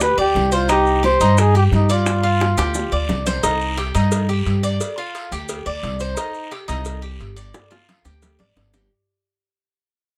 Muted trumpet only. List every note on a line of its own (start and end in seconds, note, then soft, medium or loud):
0.02 0.17 B4 loud
0.20 0.55 G4 loud
0.54 0.70 F4 medium
0.71 1.02 G4 loud
1.04 1.41 C5 loud
1.40 1.56 G#4 loud
1.57 1.64 G4 medium
1.74 1.93 D#4 medium
1.91 3.10 F4 medium